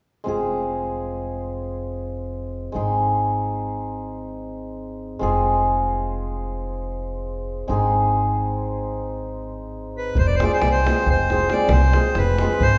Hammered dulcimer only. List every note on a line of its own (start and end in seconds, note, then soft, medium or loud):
0.24 2.71 G#3 medium
0.24 2.74 C4 medium
0.24 3.63 F4 soft
0.28 2.75 G#4 medium
2.72 5.18 G#3 medium
2.72 5.20 C4 soft
2.72 6.36 D#4 soft
2.72 5.22 G#4 medium
5.19 7.66 G#3 medium
5.19 7.68 C4 medium
5.19 8.58 F4 medium
5.19 7.70 G#4 medium
7.68 10.21 G#3 medium
7.68 10.42 C4 medium
7.68 11.30 D#4 medium
7.68 10.43 G#4 medium
10.41 10.85 G#3 soft
10.41 10.55 C4 soft
10.41 10.56 F4 medium
10.41 10.56 G#4 medium
10.86 11.29 G#3 soft
10.86 11.00 C4 soft
10.86 11.01 F4 soft
10.86 11.01 G#4 medium
11.30 11.49 G#3 soft
11.30 11.44 C4 medium
11.30 11.45 F4 soft
11.30 11.44 G#4 medium
11.51 11.93 G#3 soft
11.51 11.65 C4 soft
11.51 11.64 F4 soft
11.51 11.65 G#4 medium
11.94 12.40 G#3 soft
11.94 12.09 C4 soft
11.94 12.09 F4 medium
11.94 12.09 G#4 medium
12.41 12.66 G#3 medium
12.41 12.55 C4 soft
12.41 12.55 F4 medium
12.41 12.55 G#4 medium